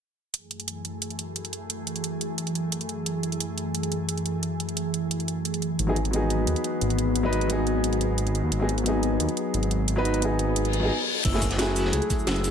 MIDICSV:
0, 0, Header, 1, 7, 480
1, 0, Start_track
1, 0, Tempo, 340909
1, 474, Time_signature, 4, 2, 24, 8
1, 17610, End_track
2, 0, Start_track
2, 0, Title_t, "Vibraphone"
2, 0, Program_c, 0, 11
2, 15837, Note_on_c, 0, 64, 82
2, 15969, Note_off_c, 0, 64, 0
2, 16112, Control_c, 0, 64, 127
2, 16320, Note_on_c, 0, 66, 82
2, 16451, Note_off_c, 0, 66, 0
2, 16798, Note_on_c, 0, 68, 82
2, 17013, Note_off_c, 0, 68, 0
2, 17279, Note_on_c, 0, 64, 76
2, 17410, Note_off_c, 0, 64, 0
2, 17610, End_track
3, 0, Start_track
3, 0, Title_t, "Grand piano"
3, 0, Program_c, 1, 0
3, 8262, Note_on_c, 1, 54, 67
3, 8275, Note_on_c, 1, 59, 64
3, 8288, Note_on_c, 1, 63, 61
3, 8298, Note_on_c, 1, 68, 74
3, 8353, Note_off_c, 1, 54, 0
3, 8359, Note_off_c, 1, 59, 0
3, 8366, Note_off_c, 1, 63, 0
3, 8371, Note_off_c, 1, 68, 0
3, 8600, Note_on_c, 1, 54, 67
3, 8623, Note_on_c, 1, 59, 61
3, 8648, Note_on_c, 1, 63, 60
3, 8672, Note_on_c, 1, 68, 73
3, 10151, Note_off_c, 1, 54, 0
3, 10163, Note_off_c, 1, 59, 0
3, 10175, Note_off_c, 1, 63, 0
3, 10182, Note_on_c, 1, 54, 84
3, 10188, Note_off_c, 1, 68, 0
3, 10194, Note_on_c, 1, 59, 80
3, 10204, Note_on_c, 1, 63, 82
3, 10217, Note_on_c, 1, 71, 98
3, 10500, Note_off_c, 1, 54, 0
3, 10521, Note_on_c, 1, 54, 72
3, 10522, Note_off_c, 1, 59, 0
3, 10530, Note_off_c, 1, 63, 0
3, 10536, Note_off_c, 1, 71, 0
3, 10543, Note_on_c, 1, 59, 68
3, 10569, Note_on_c, 1, 63, 67
3, 10592, Note_on_c, 1, 68, 82
3, 12072, Note_off_c, 1, 54, 0
3, 12083, Note_off_c, 1, 59, 0
3, 12096, Note_off_c, 1, 63, 0
3, 12104, Note_on_c, 1, 54, 68
3, 12107, Note_off_c, 1, 68, 0
3, 12115, Note_on_c, 1, 59, 62
3, 12126, Note_on_c, 1, 63, 63
3, 12139, Note_on_c, 1, 68, 76
3, 12194, Note_off_c, 1, 54, 0
3, 12199, Note_off_c, 1, 59, 0
3, 12205, Note_off_c, 1, 63, 0
3, 12212, Note_off_c, 1, 68, 0
3, 12440, Note_on_c, 1, 54, 66
3, 12464, Note_on_c, 1, 59, 62
3, 12488, Note_on_c, 1, 63, 62
3, 12511, Note_on_c, 1, 68, 77
3, 13992, Note_off_c, 1, 54, 0
3, 14003, Note_off_c, 1, 59, 0
3, 14015, Note_off_c, 1, 63, 0
3, 14022, Note_on_c, 1, 54, 89
3, 14027, Note_off_c, 1, 68, 0
3, 14034, Note_on_c, 1, 59, 84
3, 14045, Note_on_c, 1, 63, 84
3, 14056, Note_on_c, 1, 71, 100
3, 14338, Note_off_c, 1, 54, 0
3, 14359, Note_on_c, 1, 54, 72
3, 14361, Note_off_c, 1, 59, 0
3, 14370, Note_off_c, 1, 63, 0
3, 14376, Note_off_c, 1, 71, 0
3, 14383, Note_on_c, 1, 59, 68
3, 14407, Note_on_c, 1, 63, 67
3, 14430, Note_on_c, 1, 68, 81
3, 15182, Note_off_c, 1, 54, 0
3, 15203, Note_on_c, 1, 54, 78
3, 15207, Note_off_c, 1, 59, 0
3, 15220, Note_off_c, 1, 63, 0
3, 15228, Note_on_c, 1, 59, 74
3, 15232, Note_off_c, 1, 68, 0
3, 15251, Note_on_c, 1, 63, 73
3, 15278, Note_on_c, 1, 68, 88
3, 15337, Note_off_c, 1, 54, 0
3, 15350, Note_off_c, 1, 59, 0
3, 15362, Note_off_c, 1, 63, 0
3, 15375, Note_off_c, 1, 68, 0
3, 15945, Note_on_c, 1, 54, 73
3, 15957, Note_on_c, 1, 57, 64
3, 15969, Note_on_c, 1, 64, 68
3, 15981, Note_on_c, 1, 68, 81
3, 16034, Note_off_c, 1, 54, 0
3, 16041, Note_off_c, 1, 57, 0
3, 16046, Note_off_c, 1, 64, 0
3, 16052, Note_off_c, 1, 68, 0
3, 16285, Note_on_c, 1, 54, 74
3, 16308, Note_on_c, 1, 57, 63
3, 16332, Note_on_c, 1, 64, 69
3, 16356, Note_on_c, 1, 68, 83
3, 17610, Note_off_c, 1, 54, 0
3, 17610, Note_off_c, 1, 57, 0
3, 17610, Note_off_c, 1, 64, 0
3, 17610, Note_off_c, 1, 68, 0
3, 17610, End_track
4, 0, Start_track
4, 0, Title_t, "Ambient pad"
4, 0, Program_c, 2, 92
4, 478, Note_on_c, 2, 42, 77
4, 481, Note_on_c, 2, 52, 68
4, 481, Note_on_c, 2, 68, 84
4, 482, Note_on_c, 2, 57, 69
4, 8101, Note_off_c, 2, 42, 0
4, 8101, Note_off_c, 2, 52, 0
4, 8102, Note_off_c, 2, 57, 0
4, 8151, Note_on_c, 2, 54, 80
4, 8155, Note_on_c, 2, 59, 73
4, 15297, Note_off_c, 2, 54, 0
4, 15299, Note_off_c, 2, 59, 0
4, 15302, Note_off_c, 2, 68, 0
4, 17610, End_track
5, 0, Start_track
5, 0, Title_t, "Detuned saw bass"
5, 0, Program_c, 3, 39
5, 8154, Note_on_c, 3, 32, 98
5, 9096, Note_off_c, 3, 32, 0
5, 9110, Note_on_c, 3, 39, 94
5, 9224, Note_off_c, 3, 39, 0
5, 9592, Note_on_c, 3, 32, 97
5, 10055, Note_off_c, 3, 32, 0
5, 10073, Note_on_c, 3, 32, 96
5, 11015, Note_off_c, 3, 32, 0
5, 11032, Note_on_c, 3, 32, 88
5, 11377, Note_off_c, 3, 32, 0
5, 11397, Note_on_c, 3, 32, 88
5, 11858, Note_off_c, 3, 32, 0
5, 11875, Note_on_c, 3, 39, 97
5, 11982, Note_off_c, 3, 39, 0
5, 11991, Note_on_c, 3, 32, 97
5, 12934, Note_off_c, 3, 32, 0
5, 12954, Note_on_c, 3, 39, 98
5, 13066, Note_off_c, 3, 39, 0
5, 13431, Note_on_c, 3, 32, 99
5, 13894, Note_off_c, 3, 32, 0
5, 13909, Note_on_c, 3, 32, 98
5, 14854, Note_off_c, 3, 32, 0
5, 14873, Note_on_c, 3, 32, 84
5, 15218, Note_off_c, 3, 32, 0
5, 15237, Note_on_c, 3, 32, 93
5, 15354, Note_off_c, 3, 32, 0
5, 15838, Note_on_c, 3, 30, 102
5, 16778, Note_off_c, 3, 30, 0
5, 16795, Note_on_c, 3, 37, 99
5, 16906, Note_off_c, 3, 37, 0
5, 17274, Note_on_c, 3, 30, 104
5, 17610, Note_off_c, 3, 30, 0
5, 17610, End_track
6, 0, Start_track
6, 0, Title_t, "Reverse cymbal"
6, 0, Program_c, 4, 119
6, 14873, Note_on_c, 4, 60, 68
6, 15834, Note_off_c, 4, 60, 0
6, 17610, End_track
7, 0, Start_track
7, 0, Title_t, "Drums"
7, 477, Note_on_c, 9, 42, 86
7, 618, Note_off_c, 9, 42, 0
7, 716, Note_on_c, 9, 42, 61
7, 840, Note_off_c, 9, 42, 0
7, 840, Note_on_c, 9, 42, 34
7, 955, Note_off_c, 9, 42, 0
7, 955, Note_on_c, 9, 42, 85
7, 1095, Note_off_c, 9, 42, 0
7, 1194, Note_on_c, 9, 42, 59
7, 1335, Note_off_c, 9, 42, 0
7, 1434, Note_on_c, 9, 42, 81
7, 1556, Note_off_c, 9, 42, 0
7, 1556, Note_on_c, 9, 42, 34
7, 1674, Note_off_c, 9, 42, 0
7, 1674, Note_on_c, 9, 42, 61
7, 1814, Note_off_c, 9, 42, 0
7, 1913, Note_on_c, 9, 42, 81
7, 2037, Note_off_c, 9, 42, 0
7, 2037, Note_on_c, 9, 42, 36
7, 2153, Note_off_c, 9, 42, 0
7, 2153, Note_on_c, 9, 42, 57
7, 2294, Note_off_c, 9, 42, 0
7, 2392, Note_on_c, 9, 42, 89
7, 2532, Note_off_c, 9, 42, 0
7, 2633, Note_on_c, 9, 42, 64
7, 2755, Note_off_c, 9, 42, 0
7, 2755, Note_on_c, 9, 42, 35
7, 2870, Note_off_c, 9, 42, 0
7, 2870, Note_on_c, 9, 42, 84
7, 3011, Note_off_c, 9, 42, 0
7, 3113, Note_on_c, 9, 42, 62
7, 3254, Note_off_c, 9, 42, 0
7, 3351, Note_on_c, 9, 42, 82
7, 3476, Note_off_c, 9, 42, 0
7, 3476, Note_on_c, 9, 42, 34
7, 3595, Note_off_c, 9, 42, 0
7, 3595, Note_on_c, 9, 42, 62
7, 3736, Note_off_c, 9, 42, 0
7, 3832, Note_on_c, 9, 42, 87
7, 3954, Note_off_c, 9, 42, 0
7, 3954, Note_on_c, 9, 42, 36
7, 4070, Note_off_c, 9, 42, 0
7, 4070, Note_on_c, 9, 42, 59
7, 4210, Note_off_c, 9, 42, 0
7, 4312, Note_on_c, 9, 42, 84
7, 4453, Note_off_c, 9, 42, 0
7, 4552, Note_on_c, 9, 42, 62
7, 4678, Note_off_c, 9, 42, 0
7, 4678, Note_on_c, 9, 42, 34
7, 4794, Note_off_c, 9, 42, 0
7, 4794, Note_on_c, 9, 42, 89
7, 4934, Note_off_c, 9, 42, 0
7, 5035, Note_on_c, 9, 42, 62
7, 5176, Note_off_c, 9, 42, 0
7, 5274, Note_on_c, 9, 42, 84
7, 5398, Note_off_c, 9, 42, 0
7, 5398, Note_on_c, 9, 42, 34
7, 5515, Note_off_c, 9, 42, 0
7, 5515, Note_on_c, 9, 42, 61
7, 5656, Note_off_c, 9, 42, 0
7, 5754, Note_on_c, 9, 42, 82
7, 5879, Note_off_c, 9, 42, 0
7, 5879, Note_on_c, 9, 42, 35
7, 5993, Note_off_c, 9, 42, 0
7, 5993, Note_on_c, 9, 42, 55
7, 6134, Note_off_c, 9, 42, 0
7, 6235, Note_on_c, 9, 42, 82
7, 6376, Note_off_c, 9, 42, 0
7, 6477, Note_on_c, 9, 42, 60
7, 6599, Note_off_c, 9, 42, 0
7, 6599, Note_on_c, 9, 42, 34
7, 6714, Note_off_c, 9, 42, 0
7, 6714, Note_on_c, 9, 42, 83
7, 6854, Note_off_c, 9, 42, 0
7, 6954, Note_on_c, 9, 42, 58
7, 7095, Note_off_c, 9, 42, 0
7, 7195, Note_on_c, 9, 42, 84
7, 7321, Note_off_c, 9, 42, 0
7, 7321, Note_on_c, 9, 42, 33
7, 7436, Note_off_c, 9, 42, 0
7, 7436, Note_on_c, 9, 42, 59
7, 7577, Note_off_c, 9, 42, 0
7, 7676, Note_on_c, 9, 42, 80
7, 7799, Note_off_c, 9, 42, 0
7, 7799, Note_on_c, 9, 42, 34
7, 7915, Note_off_c, 9, 42, 0
7, 7915, Note_on_c, 9, 42, 54
7, 8055, Note_off_c, 9, 42, 0
7, 8154, Note_on_c, 9, 42, 81
7, 8295, Note_off_c, 9, 42, 0
7, 8396, Note_on_c, 9, 42, 58
7, 8519, Note_off_c, 9, 42, 0
7, 8519, Note_on_c, 9, 42, 33
7, 8637, Note_off_c, 9, 42, 0
7, 8637, Note_on_c, 9, 42, 81
7, 8778, Note_off_c, 9, 42, 0
7, 8876, Note_on_c, 9, 42, 56
7, 9016, Note_off_c, 9, 42, 0
7, 9113, Note_on_c, 9, 42, 76
7, 9239, Note_off_c, 9, 42, 0
7, 9239, Note_on_c, 9, 42, 31
7, 9354, Note_off_c, 9, 42, 0
7, 9354, Note_on_c, 9, 42, 58
7, 9495, Note_off_c, 9, 42, 0
7, 9595, Note_on_c, 9, 42, 77
7, 9720, Note_off_c, 9, 42, 0
7, 9720, Note_on_c, 9, 42, 32
7, 9835, Note_off_c, 9, 42, 0
7, 9835, Note_on_c, 9, 42, 54
7, 9976, Note_off_c, 9, 42, 0
7, 10075, Note_on_c, 9, 42, 80
7, 10215, Note_off_c, 9, 42, 0
7, 10316, Note_on_c, 9, 42, 59
7, 10438, Note_off_c, 9, 42, 0
7, 10438, Note_on_c, 9, 42, 32
7, 10555, Note_off_c, 9, 42, 0
7, 10555, Note_on_c, 9, 42, 82
7, 10696, Note_off_c, 9, 42, 0
7, 10795, Note_on_c, 9, 42, 54
7, 10936, Note_off_c, 9, 42, 0
7, 11037, Note_on_c, 9, 42, 79
7, 11160, Note_off_c, 9, 42, 0
7, 11160, Note_on_c, 9, 42, 32
7, 11277, Note_off_c, 9, 42, 0
7, 11277, Note_on_c, 9, 42, 58
7, 11418, Note_off_c, 9, 42, 0
7, 11516, Note_on_c, 9, 42, 75
7, 11640, Note_off_c, 9, 42, 0
7, 11640, Note_on_c, 9, 42, 34
7, 11756, Note_off_c, 9, 42, 0
7, 11756, Note_on_c, 9, 42, 54
7, 11897, Note_off_c, 9, 42, 0
7, 11995, Note_on_c, 9, 42, 80
7, 12136, Note_off_c, 9, 42, 0
7, 12235, Note_on_c, 9, 42, 62
7, 12359, Note_off_c, 9, 42, 0
7, 12359, Note_on_c, 9, 42, 34
7, 12474, Note_off_c, 9, 42, 0
7, 12474, Note_on_c, 9, 42, 82
7, 12615, Note_off_c, 9, 42, 0
7, 12713, Note_on_c, 9, 42, 59
7, 12854, Note_off_c, 9, 42, 0
7, 12954, Note_on_c, 9, 42, 83
7, 13075, Note_off_c, 9, 42, 0
7, 13075, Note_on_c, 9, 42, 33
7, 13193, Note_off_c, 9, 42, 0
7, 13193, Note_on_c, 9, 42, 62
7, 13334, Note_off_c, 9, 42, 0
7, 13433, Note_on_c, 9, 42, 80
7, 13556, Note_off_c, 9, 42, 0
7, 13556, Note_on_c, 9, 42, 35
7, 13672, Note_off_c, 9, 42, 0
7, 13672, Note_on_c, 9, 42, 56
7, 13813, Note_off_c, 9, 42, 0
7, 13910, Note_on_c, 9, 42, 86
7, 14051, Note_off_c, 9, 42, 0
7, 14153, Note_on_c, 9, 42, 63
7, 14276, Note_off_c, 9, 42, 0
7, 14276, Note_on_c, 9, 42, 36
7, 14392, Note_off_c, 9, 42, 0
7, 14392, Note_on_c, 9, 42, 85
7, 14532, Note_off_c, 9, 42, 0
7, 14632, Note_on_c, 9, 42, 61
7, 14773, Note_off_c, 9, 42, 0
7, 14871, Note_on_c, 9, 42, 87
7, 14995, Note_off_c, 9, 42, 0
7, 14995, Note_on_c, 9, 42, 35
7, 15113, Note_off_c, 9, 42, 0
7, 15113, Note_on_c, 9, 42, 62
7, 15254, Note_off_c, 9, 42, 0
7, 15838, Note_on_c, 9, 42, 93
7, 15838, Note_on_c, 9, 49, 101
7, 15839, Note_off_c, 9, 42, 0
7, 15839, Note_on_c, 9, 36, 117
7, 15839, Note_on_c, 9, 42, 89
7, 15975, Note_on_c, 9, 38, 46
7, 15979, Note_off_c, 9, 36, 0
7, 15979, Note_off_c, 9, 49, 0
7, 15980, Note_off_c, 9, 42, 0
7, 16077, Note_on_c, 9, 42, 71
7, 16077, Note_on_c, 9, 69, 64
7, 16078, Note_off_c, 9, 42, 0
7, 16078, Note_on_c, 9, 42, 62
7, 16079, Note_on_c, 9, 36, 61
7, 16116, Note_off_c, 9, 38, 0
7, 16200, Note_on_c, 9, 38, 49
7, 16202, Note_off_c, 9, 42, 0
7, 16202, Note_on_c, 9, 42, 39
7, 16218, Note_off_c, 9, 69, 0
7, 16219, Note_off_c, 9, 36, 0
7, 16313, Note_off_c, 9, 38, 0
7, 16313, Note_on_c, 9, 38, 113
7, 16319, Note_off_c, 9, 38, 0
7, 16319, Note_off_c, 9, 42, 0
7, 16319, Note_on_c, 9, 38, 119
7, 16319, Note_on_c, 9, 42, 97
7, 16324, Note_off_c, 9, 42, 0
7, 16324, Note_on_c, 9, 42, 96
7, 16443, Note_off_c, 9, 38, 0
7, 16443, Note_on_c, 9, 38, 44
7, 16465, Note_off_c, 9, 42, 0
7, 16559, Note_on_c, 9, 42, 67
7, 16559, Note_on_c, 9, 69, 61
7, 16562, Note_on_c, 9, 46, 83
7, 16584, Note_off_c, 9, 38, 0
7, 16684, Note_on_c, 9, 38, 49
7, 16700, Note_off_c, 9, 42, 0
7, 16700, Note_off_c, 9, 69, 0
7, 16703, Note_off_c, 9, 46, 0
7, 16798, Note_on_c, 9, 42, 96
7, 16800, Note_off_c, 9, 42, 0
7, 16800, Note_on_c, 9, 42, 80
7, 16825, Note_off_c, 9, 38, 0
7, 16923, Note_off_c, 9, 42, 0
7, 16923, Note_on_c, 9, 42, 39
7, 17039, Note_off_c, 9, 42, 0
7, 17039, Note_on_c, 9, 42, 67
7, 17040, Note_off_c, 9, 42, 0
7, 17040, Note_on_c, 9, 36, 106
7, 17040, Note_on_c, 9, 42, 69
7, 17040, Note_on_c, 9, 69, 63
7, 17164, Note_off_c, 9, 69, 0
7, 17164, Note_on_c, 9, 69, 29
7, 17180, Note_off_c, 9, 36, 0
7, 17180, Note_off_c, 9, 42, 0
7, 17277, Note_on_c, 9, 38, 113
7, 17277, Note_on_c, 9, 42, 90
7, 17287, Note_off_c, 9, 42, 0
7, 17287, Note_on_c, 9, 42, 86
7, 17289, Note_off_c, 9, 38, 0
7, 17289, Note_on_c, 9, 38, 117
7, 17305, Note_off_c, 9, 69, 0
7, 17403, Note_off_c, 9, 42, 0
7, 17403, Note_on_c, 9, 42, 40
7, 17430, Note_off_c, 9, 38, 0
7, 17518, Note_off_c, 9, 42, 0
7, 17518, Note_on_c, 9, 42, 74
7, 17518, Note_on_c, 9, 69, 60
7, 17610, Note_off_c, 9, 42, 0
7, 17610, Note_off_c, 9, 69, 0
7, 17610, End_track
0, 0, End_of_file